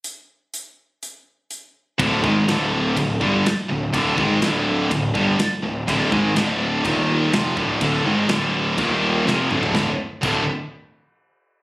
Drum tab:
CC |----------------|x---x---x---x---|x---x---x---x---|x---x---x---x---|
HH |x---x---x---x---|----------------|----------------|----------------|
SD |----------------|----o-------o---|----o-------o---|----o-------o---|
T2 |----------------|----------------|----------------|----------------|
FT |----------------|----------------|----------------|----------------|
BD |----------------|o-o-----o-o-----|o-o-----o-o-----|o-o-----o-----o-|

CC |x---x---x-------|----x-----------|
HH |----------------|----------------|
SD |----o-------o---|o---------------|
T2 |--------------o-|----------------|
FT |---------------o|----------------|
BD |o-------o-------|o---o-----------|